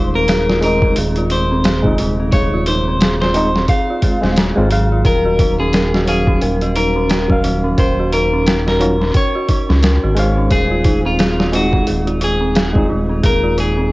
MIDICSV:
0, 0, Header, 1, 6, 480
1, 0, Start_track
1, 0, Tempo, 681818
1, 1640, Time_signature, 4, 2, 24, 8
1, 9800, End_track
2, 0, Start_track
2, 0, Title_t, "Clean electric guitar"
2, 0, Program_c, 0, 27
2, 107, Note_on_c, 0, 70, 97
2, 414, Note_off_c, 0, 70, 0
2, 448, Note_on_c, 0, 70, 90
2, 664, Note_off_c, 0, 70, 0
2, 926, Note_on_c, 0, 72, 86
2, 1364, Note_off_c, 0, 72, 0
2, 1637, Note_on_c, 0, 73, 96
2, 1859, Note_off_c, 0, 73, 0
2, 1882, Note_on_c, 0, 72, 88
2, 2219, Note_off_c, 0, 72, 0
2, 2262, Note_on_c, 0, 72, 93
2, 2571, Note_off_c, 0, 72, 0
2, 2600, Note_on_c, 0, 77, 93
2, 3480, Note_off_c, 0, 77, 0
2, 3564, Note_on_c, 0, 70, 104
2, 3900, Note_off_c, 0, 70, 0
2, 3941, Note_on_c, 0, 68, 89
2, 4251, Note_off_c, 0, 68, 0
2, 4287, Note_on_c, 0, 68, 86
2, 4504, Note_off_c, 0, 68, 0
2, 4760, Note_on_c, 0, 70, 91
2, 5200, Note_off_c, 0, 70, 0
2, 5487, Note_on_c, 0, 72, 86
2, 5704, Note_off_c, 0, 72, 0
2, 5725, Note_on_c, 0, 70, 90
2, 6061, Note_off_c, 0, 70, 0
2, 6112, Note_on_c, 0, 70, 90
2, 6416, Note_off_c, 0, 70, 0
2, 6453, Note_on_c, 0, 73, 93
2, 7327, Note_off_c, 0, 73, 0
2, 7407, Note_on_c, 0, 68, 107
2, 7742, Note_off_c, 0, 68, 0
2, 7790, Note_on_c, 0, 65, 93
2, 8095, Note_off_c, 0, 65, 0
2, 8134, Note_on_c, 0, 66, 92
2, 8347, Note_off_c, 0, 66, 0
2, 8617, Note_on_c, 0, 68, 97
2, 9049, Note_off_c, 0, 68, 0
2, 9332, Note_on_c, 0, 70, 96
2, 9546, Note_off_c, 0, 70, 0
2, 9574, Note_on_c, 0, 68, 89
2, 9800, Note_off_c, 0, 68, 0
2, 9800, End_track
3, 0, Start_track
3, 0, Title_t, "Synth bell"
3, 0, Program_c, 1, 98
3, 0, Control_c, 1, 64, 127
3, 0, Note_on_c, 1, 63, 74
3, 0, Note_on_c, 1, 65, 69
3, 0, Note_on_c, 1, 68, 99
3, 89, Note_off_c, 1, 63, 0
3, 105, Note_on_c, 1, 60, 74
3, 198, Note_off_c, 1, 60, 0
3, 203, Note_off_c, 1, 68, 0
3, 203, Note_on_c, 1, 68, 98
3, 335, Note_off_c, 1, 68, 0
3, 346, Note_off_c, 1, 65, 0
3, 346, Note_on_c, 1, 65, 74
3, 433, Note_off_c, 1, 65, 0
3, 447, Note_on_c, 1, 63, 69
3, 570, Note_off_c, 1, 63, 0
3, 589, Note_on_c, 1, 60, 71
3, 675, Note_off_c, 1, 60, 0
3, 692, Note_on_c, 1, 68, 83
3, 812, Note_off_c, 1, 68, 0
3, 827, Note_on_c, 1, 65, 76
3, 914, Note_off_c, 1, 65, 0
3, 927, Note_on_c, 1, 63, 77
3, 1057, Note_off_c, 1, 63, 0
3, 1066, Note_on_c, 1, 60, 76
3, 1158, Note_off_c, 1, 60, 0
3, 1162, Note_on_c, 1, 68, 94
3, 1294, Note_off_c, 1, 68, 0
3, 1306, Note_on_c, 1, 65, 69
3, 1393, Note_off_c, 1, 65, 0
3, 1404, Note_on_c, 1, 63, 77
3, 1528, Note_off_c, 1, 63, 0
3, 1545, Note_on_c, 1, 60, 76
3, 1633, Note_off_c, 1, 60, 0
3, 1645, Note_on_c, 1, 68, 97
3, 1776, Note_off_c, 1, 68, 0
3, 1785, Note_on_c, 1, 65, 74
3, 1873, Note_off_c, 1, 65, 0
3, 1889, Note_on_c, 1, 63, 82
3, 2011, Note_off_c, 1, 63, 0
3, 2026, Note_on_c, 1, 60, 72
3, 2118, Note_off_c, 1, 60, 0
3, 2133, Note_on_c, 1, 68, 100
3, 2259, Note_off_c, 1, 68, 0
3, 2272, Note_on_c, 1, 65, 74
3, 2356, Note_off_c, 1, 65, 0
3, 2367, Note_on_c, 1, 63, 72
3, 2490, Note_off_c, 1, 63, 0
3, 2508, Note_on_c, 1, 60, 75
3, 2594, Note_off_c, 1, 60, 0
3, 2611, Note_on_c, 1, 68, 79
3, 2732, Note_off_c, 1, 68, 0
3, 2748, Note_on_c, 1, 65, 79
3, 2834, Note_off_c, 1, 65, 0
3, 2844, Note_on_c, 1, 68, 76
3, 2968, Note_off_c, 1, 68, 0
3, 2985, Note_on_c, 1, 68, 79
3, 3073, Note_off_c, 1, 68, 0
3, 3081, Note_on_c, 1, 60, 78
3, 3161, Note_off_c, 1, 60, 0
3, 3227, Note_on_c, 1, 60, 75
3, 3314, Note_off_c, 1, 60, 0
3, 3323, Note_on_c, 1, 68, 100
3, 3448, Note_off_c, 1, 68, 0
3, 3464, Note_on_c, 1, 65, 73
3, 3553, Note_off_c, 1, 65, 0
3, 3557, Note_on_c, 1, 70, 95
3, 3571, Control_c, 1, 64, 0
3, 3677, Control_c, 1, 64, 127
3, 3692, Note_off_c, 1, 70, 0
3, 3699, Note_on_c, 1, 66, 75
3, 3790, Note_off_c, 1, 66, 0
3, 3804, Note_on_c, 1, 63, 76
3, 3928, Note_off_c, 1, 63, 0
3, 3941, Note_on_c, 1, 61, 74
3, 4036, Note_off_c, 1, 61, 0
3, 4047, Note_on_c, 1, 70, 98
3, 4177, Note_off_c, 1, 70, 0
3, 4185, Note_on_c, 1, 66, 71
3, 4273, Note_off_c, 1, 66, 0
3, 4281, Note_on_c, 1, 63, 69
3, 4407, Note_off_c, 1, 63, 0
3, 4421, Note_on_c, 1, 61, 68
3, 4511, Note_off_c, 1, 61, 0
3, 4520, Note_on_c, 1, 70, 79
3, 4646, Note_off_c, 1, 70, 0
3, 4660, Note_on_c, 1, 66, 81
3, 4750, Note_off_c, 1, 66, 0
3, 4761, Note_on_c, 1, 63, 81
3, 4894, Note_off_c, 1, 63, 0
3, 4899, Note_on_c, 1, 61, 77
3, 4995, Note_off_c, 1, 61, 0
3, 4999, Note_on_c, 1, 70, 99
3, 5133, Note_off_c, 1, 70, 0
3, 5140, Note_on_c, 1, 66, 72
3, 5230, Note_off_c, 1, 66, 0
3, 5240, Note_on_c, 1, 63, 78
3, 5366, Note_off_c, 1, 63, 0
3, 5377, Note_on_c, 1, 61, 70
3, 5469, Note_off_c, 1, 61, 0
3, 5477, Note_on_c, 1, 70, 97
3, 5612, Note_off_c, 1, 70, 0
3, 5627, Note_on_c, 1, 66, 76
3, 5714, Note_off_c, 1, 66, 0
3, 5729, Note_on_c, 1, 63, 81
3, 5851, Note_off_c, 1, 63, 0
3, 5863, Note_on_c, 1, 61, 78
3, 5957, Note_off_c, 1, 61, 0
3, 5961, Note_on_c, 1, 70, 100
3, 6094, Note_off_c, 1, 70, 0
3, 6101, Note_on_c, 1, 66, 74
3, 6191, Note_off_c, 1, 66, 0
3, 6200, Note_on_c, 1, 63, 76
3, 6326, Note_off_c, 1, 63, 0
3, 6339, Note_on_c, 1, 61, 73
3, 6430, Note_off_c, 1, 61, 0
3, 6438, Note_on_c, 1, 70, 80
3, 6565, Note_off_c, 1, 70, 0
3, 6583, Note_on_c, 1, 66, 80
3, 6672, Note_off_c, 1, 66, 0
3, 6683, Note_on_c, 1, 63, 76
3, 6815, Note_off_c, 1, 63, 0
3, 6821, Note_on_c, 1, 61, 79
3, 6916, Note_off_c, 1, 61, 0
3, 6921, Note_on_c, 1, 70, 101
3, 7054, Note_off_c, 1, 70, 0
3, 7063, Note_on_c, 1, 66, 77
3, 7152, Note_off_c, 1, 66, 0
3, 7164, Note_on_c, 1, 63, 77
3, 7288, Note_off_c, 1, 63, 0
3, 7302, Note_on_c, 1, 61, 72
3, 7391, Note_off_c, 1, 61, 0
3, 7400, Note_on_c, 1, 68, 96
3, 7408, Control_c, 1, 64, 0
3, 7527, Control_c, 1, 64, 127
3, 7533, Note_off_c, 1, 68, 0
3, 7542, Note_on_c, 1, 65, 80
3, 7631, Note_off_c, 1, 65, 0
3, 7641, Note_on_c, 1, 63, 81
3, 7767, Note_off_c, 1, 63, 0
3, 7783, Note_on_c, 1, 60, 77
3, 7877, Note_off_c, 1, 60, 0
3, 7880, Note_on_c, 1, 68, 105
3, 8013, Note_off_c, 1, 68, 0
3, 8021, Note_on_c, 1, 65, 73
3, 8111, Note_off_c, 1, 65, 0
3, 8120, Note_on_c, 1, 63, 75
3, 8246, Note_off_c, 1, 63, 0
3, 8260, Note_on_c, 1, 60, 70
3, 8350, Note_off_c, 1, 60, 0
3, 8358, Note_on_c, 1, 68, 75
3, 8485, Note_off_c, 1, 68, 0
3, 8498, Note_on_c, 1, 65, 79
3, 8589, Note_off_c, 1, 65, 0
3, 8599, Note_on_c, 1, 63, 81
3, 8732, Note_off_c, 1, 63, 0
3, 8735, Note_on_c, 1, 60, 76
3, 8833, Note_off_c, 1, 60, 0
3, 8841, Note_on_c, 1, 68, 95
3, 8974, Note_off_c, 1, 68, 0
3, 8983, Note_on_c, 1, 65, 76
3, 9072, Note_off_c, 1, 65, 0
3, 9078, Note_on_c, 1, 63, 72
3, 9205, Note_off_c, 1, 63, 0
3, 9217, Note_on_c, 1, 60, 75
3, 9309, Note_off_c, 1, 60, 0
3, 9315, Note_on_c, 1, 68, 96
3, 9451, Note_off_c, 1, 68, 0
3, 9458, Note_on_c, 1, 65, 74
3, 9549, Note_off_c, 1, 65, 0
3, 9558, Note_on_c, 1, 63, 76
3, 9685, Note_off_c, 1, 63, 0
3, 9698, Note_on_c, 1, 60, 69
3, 9794, Note_off_c, 1, 60, 0
3, 9800, End_track
4, 0, Start_track
4, 0, Title_t, "Reed electric piano"
4, 0, Program_c, 2, 4
4, 0, Note_on_c, 2, 56, 93
4, 0, Note_on_c, 2, 72, 89
4, 0, Note_on_c, 2, 77, 112
4, 408, Note_off_c, 2, 56, 0
4, 415, Note_off_c, 2, 72, 0
4, 421, Note_off_c, 2, 77, 0
4, 430, Note_on_c, 2, 56, 81
4, 446, Note_on_c, 2, 60, 71
4, 461, Note_on_c, 2, 63, 90
4, 1262, Note_off_c, 2, 56, 0
4, 1270, Note_off_c, 2, 60, 0
4, 1277, Note_off_c, 2, 63, 0
4, 1284, Note_on_c, 2, 56, 83
4, 1301, Note_on_c, 2, 48, 77
4, 1313, Note_on_c, 2, 63, 87
4, 2328, Note_off_c, 2, 56, 0
4, 2337, Note_off_c, 2, 48, 0
4, 2343, Note_off_c, 2, 63, 0
4, 2354, Note_on_c, 2, 56, 85
4, 2361, Note_on_c, 2, 60, 84
4, 2369, Note_on_c, 2, 63, 100
4, 2464, Note_off_c, 2, 56, 0
4, 2467, Note_off_c, 2, 60, 0
4, 2471, Note_off_c, 2, 63, 0
4, 2830, Note_on_c, 2, 56, 69
4, 2838, Note_on_c, 2, 60, 62
4, 2844, Note_on_c, 2, 65, 79
4, 2942, Note_off_c, 2, 56, 0
4, 2945, Note_off_c, 2, 60, 0
4, 2948, Note_off_c, 2, 65, 0
4, 2966, Note_on_c, 2, 56, 70
4, 2973, Note_on_c, 2, 60, 66
4, 2978, Note_on_c, 2, 68, 80
4, 3180, Note_off_c, 2, 56, 0
4, 3183, Note_off_c, 2, 60, 0
4, 3186, Note_off_c, 2, 68, 0
4, 3212, Note_on_c, 2, 56, 91
4, 3219, Note_on_c, 2, 60, 85
4, 3223, Note_on_c, 2, 65, 96
4, 3292, Note_off_c, 2, 56, 0
4, 3296, Note_off_c, 2, 60, 0
4, 3298, Note_off_c, 2, 65, 0
4, 3299, Note_on_c, 2, 54, 88
4, 3327, Note_on_c, 2, 77, 89
4, 4246, Note_off_c, 2, 54, 0
4, 4258, Note_on_c, 2, 54, 78
4, 4260, Note_off_c, 2, 77, 0
4, 4273, Note_on_c, 2, 61, 66
4, 4284, Note_on_c, 2, 77, 86
4, 5096, Note_off_c, 2, 54, 0
4, 5103, Note_off_c, 2, 61, 0
4, 5109, Note_off_c, 2, 77, 0
4, 5125, Note_on_c, 2, 54, 82
4, 5137, Note_on_c, 2, 61, 72
4, 5154, Note_on_c, 2, 77, 91
4, 6169, Note_off_c, 2, 54, 0
4, 6175, Note_off_c, 2, 61, 0
4, 6183, Note_off_c, 2, 77, 0
4, 6192, Note_on_c, 2, 54, 89
4, 6199, Note_on_c, 2, 61, 82
4, 6205, Note_on_c, 2, 65, 92
4, 6303, Note_off_c, 2, 54, 0
4, 6306, Note_off_c, 2, 61, 0
4, 6309, Note_off_c, 2, 65, 0
4, 7145, Note_on_c, 2, 56, 92
4, 7160, Note_on_c, 2, 72, 89
4, 7176, Note_on_c, 2, 77, 102
4, 8089, Note_off_c, 2, 56, 0
4, 8096, Note_off_c, 2, 72, 0
4, 8104, Note_off_c, 2, 77, 0
4, 8112, Note_on_c, 2, 56, 80
4, 8128, Note_on_c, 2, 60, 75
4, 8139, Note_on_c, 2, 63, 84
4, 8942, Note_off_c, 2, 56, 0
4, 8951, Note_off_c, 2, 60, 0
4, 8956, Note_off_c, 2, 63, 0
4, 8965, Note_on_c, 2, 56, 81
4, 8981, Note_on_c, 2, 60, 70
4, 8995, Note_on_c, 2, 63, 89
4, 9800, Note_off_c, 2, 56, 0
4, 9800, Note_off_c, 2, 60, 0
4, 9800, Note_off_c, 2, 63, 0
4, 9800, End_track
5, 0, Start_track
5, 0, Title_t, "Analog synth bass"
5, 0, Program_c, 3, 38
5, 0, Note_on_c, 3, 27, 101
5, 661, Note_off_c, 3, 27, 0
5, 684, Note_on_c, 3, 27, 89
5, 1383, Note_off_c, 3, 27, 0
5, 1407, Note_on_c, 3, 27, 100
5, 1620, Note_off_c, 3, 27, 0
5, 1637, Note_on_c, 3, 27, 106
5, 2580, Note_off_c, 3, 27, 0
5, 2982, Note_on_c, 3, 27, 82
5, 3188, Note_off_c, 3, 27, 0
5, 3220, Note_on_c, 3, 32, 83
5, 3541, Note_off_c, 3, 32, 0
5, 3558, Note_on_c, 3, 27, 98
5, 4500, Note_off_c, 3, 27, 0
5, 4522, Note_on_c, 3, 27, 88
5, 5222, Note_off_c, 3, 27, 0
5, 5241, Note_on_c, 3, 27, 107
5, 5457, Note_off_c, 3, 27, 0
5, 5479, Note_on_c, 3, 27, 108
5, 6420, Note_off_c, 3, 27, 0
5, 6826, Note_on_c, 3, 37, 90
5, 7030, Note_off_c, 3, 37, 0
5, 7066, Note_on_c, 3, 32, 84
5, 7384, Note_off_c, 3, 32, 0
5, 7400, Note_on_c, 3, 27, 103
5, 8341, Note_off_c, 3, 27, 0
5, 8370, Note_on_c, 3, 27, 96
5, 9066, Note_off_c, 3, 27, 0
5, 9087, Note_on_c, 3, 27, 101
5, 9300, Note_off_c, 3, 27, 0
5, 9320, Note_on_c, 3, 27, 108
5, 9800, Note_off_c, 3, 27, 0
5, 9800, End_track
6, 0, Start_track
6, 0, Title_t, "Drums"
6, 195, Note_on_c, 9, 46, 87
6, 204, Note_on_c, 9, 38, 109
6, 265, Note_off_c, 9, 46, 0
6, 274, Note_off_c, 9, 38, 0
6, 347, Note_on_c, 9, 38, 57
6, 418, Note_off_c, 9, 38, 0
6, 439, Note_on_c, 9, 46, 63
6, 509, Note_off_c, 9, 46, 0
6, 577, Note_on_c, 9, 36, 92
6, 648, Note_off_c, 9, 36, 0
6, 675, Note_on_c, 9, 46, 91
6, 746, Note_off_c, 9, 46, 0
6, 815, Note_on_c, 9, 42, 46
6, 886, Note_off_c, 9, 42, 0
6, 915, Note_on_c, 9, 46, 62
6, 985, Note_off_c, 9, 46, 0
6, 1155, Note_on_c, 9, 46, 87
6, 1163, Note_on_c, 9, 38, 120
6, 1225, Note_off_c, 9, 46, 0
6, 1233, Note_off_c, 9, 38, 0
6, 1296, Note_on_c, 9, 36, 86
6, 1366, Note_off_c, 9, 36, 0
6, 1394, Note_on_c, 9, 46, 69
6, 1464, Note_off_c, 9, 46, 0
6, 1634, Note_on_c, 9, 46, 84
6, 1636, Note_on_c, 9, 36, 112
6, 1704, Note_off_c, 9, 46, 0
6, 1707, Note_off_c, 9, 36, 0
6, 1873, Note_on_c, 9, 46, 73
6, 1943, Note_off_c, 9, 46, 0
6, 2116, Note_on_c, 9, 46, 86
6, 2124, Note_on_c, 9, 38, 117
6, 2186, Note_off_c, 9, 46, 0
6, 2195, Note_off_c, 9, 38, 0
6, 2265, Note_on_c, 9, 38, 50
6, 2335, Note_off_c, 9, 38, 0
6, 2353, Note_on_c, 9, 46, 66
6, 2424, Note_off_c, 9, 46, 0
6, 2505, Note_on_c, 9, 38, 43
6, 2575, Note_off_c, 9, 38, 0
6, 2593, Note_on_c, 9, 46, 86
6, 2595, Note_on_c, 9, 36, 106
6, 2663, Note_off_c, 9, 46, 0
6, 2666, Note_off_c, 9, 36, 0
6, 2834, Note_on_c, 9, 46, 66
6, 2836, Note_on_c, 9, 36, 95
6, 2904, Note_off_c, 9, 46, 0
6, 2906, Note_off_c, 9, 36, 0
6, 2984, Note_on_c, 9, 38, 42
6, 3054, Note_off_c, 9, 38, 0
6, 3075, Note_on_c, 9, 46, 89
6, 3083, Note_on_c, 9, 38, 115
6, 3145, Note_off_c, 9, 46, 0
6, 3154, Note_off_c, 9, 38, 0
6, 3315, Note_on_c, 9, 46, 66
6, 3385, Note_off_c, 9, 46, 0
6, 3555, Note_on_c, 9, 36, 115
6, 3555, Note_on_c, 9, 46, 81
6, 3625, Note_off_c, 9, 36, 0
6, 3626, Note_off_c, 9, 46, 0
6, 3795, Note_on_c, 9, 36, 100
6, 3795, Note_on_c, 9, 46, 73
6, 3866, Note_off_c, 9, 36, 0
6, 3866, Note_off_c, 9, 46, 0
6, 4034, Note_on_c, 9, 46, 84
6, 4042, Note_on_c, 9, 38, 117
6, 4104, Note_off_c, 9, 46, 0
6, 4113, Note_off_c, 9, 38, 0
6, 4185, Note_on_c, 9, 38, 55
6, 4255, Note_off_c, 9, 38, 0
6, 4277, Note_on_c, 9, 46, 66
6, 4347, Note_off_c, 9, 46, 0
6, 4415, Note_on_c, 9, 36, 96
6, 4486, Note_off_c, 9, 36, 0
6, 4516, Note_on_c, 9, 46, 82
6, 4586, Note_off_c, 9, 46, 0
6, 4655, Note_on_c, 9, 42, 45
6, 4726, Note_off_c, 9, 42, 0
6, 4755, Note_on_c, 9, 46, 64
6, 4825, Note_off_c, 9, 46, 0
6, 4994, Note_on_c, 9, 46, 86
6, 5002, Note_on_c, 9, 38, 121
6, 5064, Note_off_c, 9, 46, 0
6, 5073, Note_off_c, 9, 38, 0
6, 5136, Note_on_c, 9, 36, 94
6, 5207, Note_off_c, 9, 36, 0
6, 5236, Note_on_c, 9, 46, 69
6, 5307, Note_off_c, 9, 46, 0
6, 5475, Note_on_c, 9, 46, 89
6, 5476, Note_on_c, 9, 36, 116
6, 5546, Note_off_c, 9, 46, 0
6, 5547, Note_off_c, 9, 36, 0
6, 5719, Note_on_c, 9, 46, 68
6, 5789, Note_off_c, 9, 46, 0
6, 5958, Note_on_c, 9, 46, 85
6, 5966, Note_on_c, 9, 38, 112
6, 6028, Note_off_c, 9, 46, 0
6, 6037, Note_off_c, 9, 38, 0
6, 6108, Note_on_c, 9, 38, 52
6, 6178, Note_off_c, 9, 38, 0
6, 6199, Note_on_c, 9, 46, 64
6, 6269, Note_off_c, 9, 46, 0
6, 6346, Note_on_c, 9, 38, 42
6, 6417, Note_off_c, 9, 38, 0
6, 6435, Note_on_c, 9, 46, 86
6, 6438, Note_on_c, 9, 36, 110
6, 6506, Note_off_c, 9, 46, 0
6, 6508, Note_off_c, 9, 36, 0
6, 6677, Note_on_c, 9, 46, 66
6, 6678, Note_on_c, 9, 36, 89
6, 6747, Note_off_c, 9, 46, 0
6, 6749, Note_off_c, 9, 36, 0
6, 6828, Note_on_c, 9, 38, 42
6, 6898, Note_off_c, 9, 38, 0
6, 6917, Note_on_c, 9, 46, 94
6, 6925, Note_on_c, 9, 38, 119
6, 6987, Note_off_c, 9, 46, 0
6, 6996, Note_off_c, 9, 38, 0
6, 7156, Note_on_c, 9, 46, 68
6, 7227, Note_off_c, 9, 46, 0
6, 7397, Note_on_c, 9, 46, 86
6, 7398, Note_on_c, 9, 36, 112
6, 7467, Note_off_c, 9, 46, 0
6, 7469, Note_off_c, 9, 36, 0
6, 7635, Note_on_c, 9, 46, 68
6, 7638, Note_on_c, 9, 36, 93
6, 7706, Note_off_c, 9, 46, 0
6, 7708, Note_off_c, 9, 36, 0
6, 7878, Note_on_c, 9, 46, 85
6, 7886, Note_on_c, 9, 38, 119
6, 7948, Note_off_c, 9, 46, 0
6, 7957, Note_off_c, 9, 38, 0
6, 8026, Note_on_c, 9, 38, 57
6, 8097, Note_off_c, 9, 38, 0
6, 8120, Note_on_c, 9, 46, 67
6, 8190, Note_off_c, 9, 46, 0
6, 8258, Note_on_c, 9, 36, 93
6, 8329, Note_off_c, 9, 36, 0
6, 8357, Note_on_c, 9, 46, 89
6, 8427, Note_off_c, 9, 46, 0
6, 8501, Note_on_c, 9, 42, 42
6, 8571, Note_off_c, 9, 42, 0
6, 8598, Note_on_c, 9, 46, 64
6, 8668, Note_off_c, 9, 46, 0
6, 8838, Note_on_c, 9, 46, 88
6, 8846, Note_on_c, 9, 38, 115
6, 8908, Note_off_c, 9, 46, 0
6, 8917, Note_off_c, 9, 38, 0
6, 8977, Note_on_c, 9, 36, 99
6, 9048, Note_off_c, 9, 36, 0
6, 9316, Note_on_c, 9, 46, 82
6, 9318, Note_on_c, 9, 36, 112
6, 9387, Note_off_c, 9, 46, 0
6, 9388, Note_off_c, 9, 36, 0
6, 9559, Note_on_c, 9, 46, 69
6, 9629, Note_off_c, 9, 46, 0
6, 9800, End_track
0, 0, End_of_file